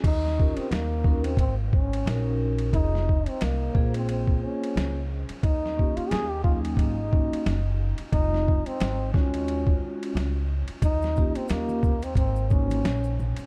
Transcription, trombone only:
X:1
M:4/4
L:1/16
Q:"Swing 16ths" 1/4=89
K:Ebdor
V:1 name="Trombone"
E3 C B,3 C C2 D4 z2 | E3 C B,3 C C2 D4 z2 | E3 F A =G F2 E6 z2 | E3 C3 D6 z4 |
E3 C B,3 C C2 D4 z2 |]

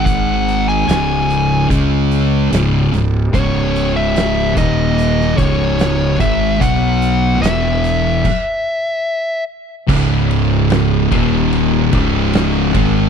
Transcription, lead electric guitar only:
X:1
M:4/4
L:1/16
Q:1/4=73
K:C#dor
V:1 name="Lead electric guitar"
f3 g g4 z8 | c3 e3 d4 c4 e2 | f4 e8- e2 z2 | z16 |]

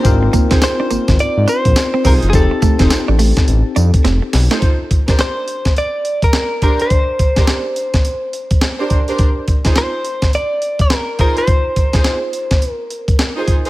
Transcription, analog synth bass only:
X:1
M:4/4
L:1/16
Q:"Swing 16ths" 1/4=105
K:Bb
V:1 name="Analog synth bass" clef=bass
_A,,,2 z A,,, z2 A,,, A,,, _A,, A,, z B,,, z2 C,, _G,,, | F,,, z2 F,,, A,,, A,,,2 z A,,, z F,, z F,,, z _C,, z | z16 | z16 |
z16 | z16 |]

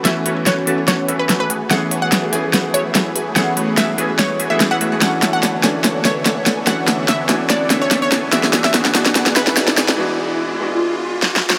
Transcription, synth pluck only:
X:1
M:4/4
L:1/16
Q:"Swing 16ths" 1/4=145
K:Bdor
V:1 name="Synth pluck"
e3 z c3 z c2 z B2 B2 z | f2 z f2 z4 z c2 z4 | f3 z e3 z c2 z e2 f2 z | f2 z f2 z4 z c2 z4 |
f3 z e3 z d2 z c2 c2 z | e2 z e2 z4 z B2 z4 | z16 |]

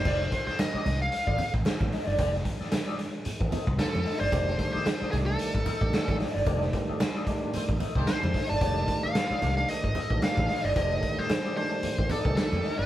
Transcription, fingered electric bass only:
X:1
M:4/4
L:1/16
Q:"Swing 16ths" 1/4=112
K:Fmix
V:1 name="Fingered electric bass" clef=bass
F,,,2 z4 C,,2 z _A,,, z =A,,, z A,,, z G,,, | F,,,2 z6 z A,,, z C,, z F,, z G,,, | F,,,2 z4 C,,2 z _A,,, z =A,,, z A,,, z G,,, | F,,,2 z6 z A,,, z C,, z F,, z G,,, |
F,,,2 z4 C,,2 z _A,,, z =A,,, z A,,, z G,,, | F,,,2 z6 z A,,, z C,, z F,, z G,,, |]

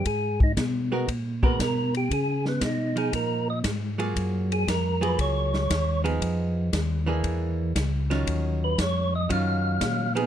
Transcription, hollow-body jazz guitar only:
X:1
M:4/4
L:1/8
Q:"Swing" 1/4=117
K:Ebm
V:1 name="Hollow-body jazz guitar"
z3 [A,CGB] z [A,CGB] z2 | z3 [F,E]3 z [G,B,FA]- | [G,B,FA]2 z [G,B,FA]3 z [F,CEA]- | [F,CEA]2 z [_F,B,=DA]3 z [E,G,_D=F]- |
[E,G,DF]2 z2 [E,G,DF]3 [F,CEA] |]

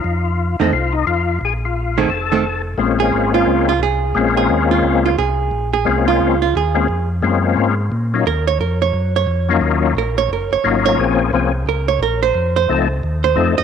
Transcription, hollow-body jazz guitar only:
X:1
M:4/4
L:1/8
Q:"Swing" 1/4=176
K:Bbm
V:1 name="Hollow-body jazz guitar"
z3 [E,=A,C] z4 | z3 [E,=A,C] z [E,A,C] z2 | z A2 F2 F A2- | A A2 F2 F A2- |
A A2 F2 F A2- | A z6 z | B d B d2 d2 z | z2 B d B d2 d- |
d z3 B d B c- | c c2 z2 c2 e |]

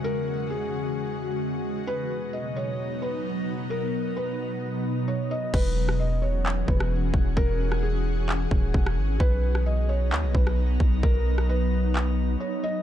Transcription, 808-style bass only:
X:1
M:4/4
L:1/16
Q:1/4=131
K:Elyd
V:1 name="808-style bass" clef=bass
z16 | z16 | z16 | E,,,8- E,,,2 E,,,4 E,,,2 |
E,,,8- E,,,2 D,,,2 E,,,2 G,,,2 | B,,,8 D,, B,,, B,,,4 B,,,2 | B,,,12 z4 |]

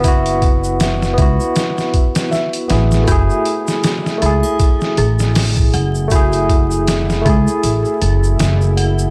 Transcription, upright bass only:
X:1
M:4/4
L:1/8
Q:"Swing 16ths" 1/4=79
K:F#m
V:1 name="Upright bass" clef=bass
F,,,3 C,, z3 A,,, | F,,, z2 C,, z A,,,2 F,,,- | F,,,3 C,, A,,, F,,, F,,,2 |]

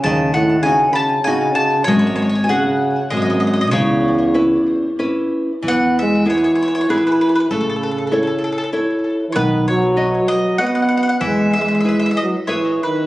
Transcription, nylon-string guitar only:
X:1
M:3/4
L:1/8
Q:"Swing" 1/4=97
K:C#m
V:1 name="Nylon-string guitar"
D,2 [CDF]2 [CDF]2 | G,2 [CFG]2 G,2 | C,2 [CEB]2 [CEB]2 | [K:E] E,2 [B,EG]2 [B,EG]2 |
A,2 [EAc]2 [EAc]2 | B,2 [FBd]2 [FBd]2 | E,2 [EGB]2 [GBe]2 |]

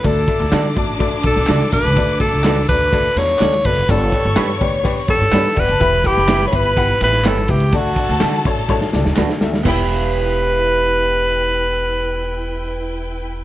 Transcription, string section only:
X:1
M:4/4
L:1/8
Q:1/4=125
K:Edor
V:1 name="String section"
[Dd']8- | [Dd']6- [Dd'] z | [cc']6 (3[Cc]/2 [Dd]/2 [Ee]/2 (3[Ff]/2 [Gg]/2 [Aa]/2 | [Bb]6- [Bb] z |
[Aa]6- [Aa] z | [EBg]8- | [EBg]8 |]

